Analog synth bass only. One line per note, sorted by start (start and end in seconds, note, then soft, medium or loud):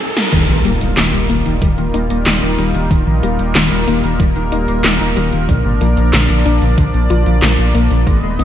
0.33 0.47 D#1 loud
0.49 0.63 A#1 medium
0.65 0.79 D#1 loud
0.81 0.95 D#1 medium
0.97 1.12 D#1 loud
1.13 1.28 D#1 medium
1.30 1.44 D#1 loud
1.46 1.60 D#1 medium
1.62 1.76 D#1 loud
1.78 1.92 D#1 medium
1.94 2.08 D#1 loud
2.10 2.25 D#1 medium
2.26 2.41 D#1 loud
2.42 2.57 D#1 medium
2.58 2.73 D#1 loud
2.75 2.89 D#1 medium
2.91 3.05 D#1 loud
3.07 3.21 A#1 medium
3.23 3.37 D#1 loud
3.39 3.54 D#1 medium
3.55 3.70 D#1 loud
3.71 3.86 D#1 medium
3.87 4.02 D#1 medium
4.04 4.18 D#1 medium
4.20 4.34 D#1 loud
4.36 4.50 D#1 medium
4.52 4.66 D#1 medium
4.68 4.83 D#1 medium
4.84 4.99 D#1 loud
5.00 5.15 D#1 medium
5.17 5.31 D#1 loud
5.33 5.47 D#1 medium
5.49 5.63 A#1 loud
5.65 5.79 G#1 medium
5.81 5.95 A#1 loud
5.97 6.12 A#1 medium
6.13 6.28 A#1 loud
6.29 6.44 A#1 medium
6.46 6.60 A#1 loud
6.62 6.76 A#1 medium
6.78 6.92 A#1 loud
6.94 7.08 A#1 medium
7.10 7.25 A#1 loud
7.26 7.41 A#1 medium
7.43 7.57 A#1 loud
7.59 7.73 A#1 medium
7.75 7.89 A#1 loud
7.91 8.05 A#1 medium
8.07 8.21 G#1 loud
8.23 8.37 D#1 medium
8.39 8.44 G#1 loud